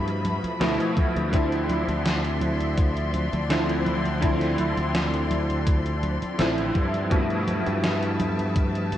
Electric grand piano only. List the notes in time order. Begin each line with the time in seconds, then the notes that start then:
Already playing: B2 F3 A3 E4
0.60 B2 F3 A3 E4
1.32 D3 F3 C4 E4
3.49 D3 F3 C4 E4
4.21 D3 F3 C4 E4
6.38 D3 F3 C4 E4
7.10 B2 F3 A3 E4